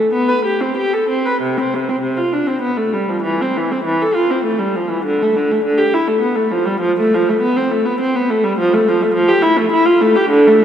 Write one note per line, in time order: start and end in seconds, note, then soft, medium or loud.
0.00 0.12 A3 medium
0.13 0.29 B3 medium
0.28 0.45 B4 medium
0.45 0.61 G4 medium
0.61 0.77 C4 soft
0.77 0.92 G4 medium
0.93 1.09 A4 soft
1.09 1.25 C4 soft
1.26 1.41 B4 medium
1.41 1.56 C3 medium
1.58 1.72 C4 soft
1.74 1.88 C3 soft
1.89 2.03 C4 soft
2.02 2.16 C3 soft
2.16 2.32 F4 soft
2.33 2.47 D4 soft
2.47 2.62 C4 soft
2.62 2.76 B3 medium
2.77 2.92 A3 soft
2.93 3.08 G3 soft
3.08 3.24 F3 soft
3.23 3.39 E3 medium
3.42 3.56 C4 soft
3.57 3.71 E3 soft
3.71 3.85 C4 soft
3.85 3.99 E3 medium
4.02 4.15 A4 soft
4.15 4.29 F4 medium
4.30 4.45 C4 soft
4.44 4.59 A3 soft
4.59 4.74 G3 soft
4.76 4.90 F3 soft
4.89 5.04 E3 soft
5.05 5.19 D3 medium
5.22 5.35 A3 medium
5.36 5.49 D3 medium
5.51 5.64 A3 soft
5.65 5.78 D3 medium
5.77 5.91 G4 medium
5.94 6.07 E4 medium
6.07 6.21 A3 medium
6.21 6.34 B3 medium
6.35 6.50 A3 soft
6.51 6.65 F3 medium
6.66 6.80 G3 medium
6.80 6.95 F3 medium
6.99 7.12 A3 medium
7.14 7.27 F3 medium
7.29 7.41 A3 medium
7.41 7.55 B3 medium
7.56 7.70 C4 medium
7.71 7.84 A3 medium
7.85 7.98 B3 medium
8.00 8.13 C4 medium
8.16 8.28 B3 medium
8.30 8.42 A3 medium
8.44 8.56 G3 medium
8.58 8.70 F3 medium
8.73 8.85 A3 medium
8.88 9.00 F3 medium
9.02 9.14 A3 medium
9.14 9.27 F3 medium
9.28 9.41 G4 medium
9.42 9.56 E4 medium
9.57 9.70 A3 medium
9.72 9.85 E4 medium
9.86 10.00 F4 medium
10.01 10.16 A3 medium
10.15 10.31 G4 medium
10.30 10.45 D3 medium
10.47 10.62 A3 medium